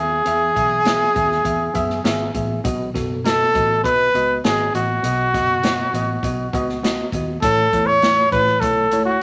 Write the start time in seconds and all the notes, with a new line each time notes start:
Already playing: D#2 B3 G#4 E5
0.26 E2 E3 B3 G#4 E5, closed hi-hat
0.55 B1 B3 G#4 E5, kick, closed hi-hat
0.85 B3 G#4 E5, snare, closed hi-hat
1.15 D#2 B3 G#4 E5, kick, closed hi-hat
1.32 snare
1.44 E2 B3 G#4 E5, kick, closed hi-hat
1.74 F#2 B3 G#4 E5, kick, closed hi-hat
1.90 snare
2.04 G#1 B3 G#4 E5 G#5, snare, closed hi-hat
2.34 A1 B3 G#4 E5, kick, closed hi-hat
2.64 B1 B2 B3 F#4 D#5, kick, closed hi-hat
2.94 F#1 B3 F#4 A4, kick, snare, closed hi-hat
3.24 B3 F#4 A4 D#5, snare, closed hi-hat
3.54 A1 B3 F#4 D#5, kick, closed hi-hat
3.84 B1 B3 F#4 B4 D#5, kick, closed hi-hat
4.14 C#2 B3 F#4 D#5, closed hi-hat
4.44 G#1 B3 F#4 G#4 D#5, snare, closed hi-hat
4.73 A1 B3 F#4 D#5, closed hi-hat
5.03 B1 B2 B3 F#4 D#5, closed hi-hat
5.33 F#1 B3 F#4 D#5, kick, snare, closed hi-hat
5.63 B3 F#4 D#5, snare, closed hi-hat
5.92 A1 B3 F#4 D#5, closed hi-hat
6.23 B1 B3 F#4 D#5, kick, closed hi-hat
6.53 C#2 B3 F#4 D#5, kick, closed hi-hat
6.69 snare
6.83 B3 F#4 D#5, snare, closed hi-hat
7.12 D#2 B3 F#4 D#5, kick, closed hi-hat
7.42 A1 A2 A3 E4 A4 C#5, kick, closed hi-hat
7.73 E2 A3 E4 C#5, kick, closed hi-hat
7.87 C#5
8.02 A3 E4 C#5, snare, closed hi-hat
8.32 A1 A3 E4 B4 C#5, kick, closed hi-hat
8.47 snare
8.61 B1 A3 E4 A4 C#5, kick, closed hi-hat
8.91 C#2 A3 E4 C#5, closed hi-hat
9.06 F#4